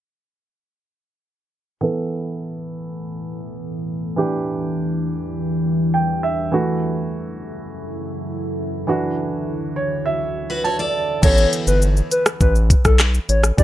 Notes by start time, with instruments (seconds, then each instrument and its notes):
1.81 ambient pad A2 E3 B3 A4, grand piano E3 B3 A4
4.16 ambient pad E2 E3 D4 G4, grand piano E3 D4 G4
5.94 grand piano G5
6.23 grand piano E5
6.52 ambient pad F#2 C#3 E4 A4, grand piano E3 A3 F#4
8.87 ambient pad D2 D3 F#4, grand piano E3 D4 F#4
9.76 grand piano C#5
10.06 grand piano E5
10.50 steel-string acoustic guitar F#4 B4
10.64 steel-string acoustic guitar F#4 C#5, grand piano A5
10.79 steel-string acoustic guitar A4 D5
11.22 analog synth bass A1, grand piano E3 B3 A4, soft synth lead C#5, kick, crash, shaker
11.38 shaker
11.53 closed hi-hat, shaker
11.67 analog synth bass G1, soft synth lead B4, shaker
11.82 shaker
11.97 shaker
12.11 soft synth lead B4, closed hi-hat, shaker
12.26 cross-stick, shaker
12.41 analog synth bass A1, soft synth lead B4, kick, shaker
12.56 shaker
12.70 kick, closed hi-hat, shaker
12.85 analog synth bass B1, soft synth lead A4, kick, cross-stick, shaker
13.00 cross-stick, clap, shaker
13.14 shaker
13.29 analog synth bass A1, soft synth lead C#5, closed hi-hat, shaker
13.43 cross-stick, shaker
13.57 analog synth bass E1, grand piano E3 D4 G4, soft synth lead D5, kick, shaker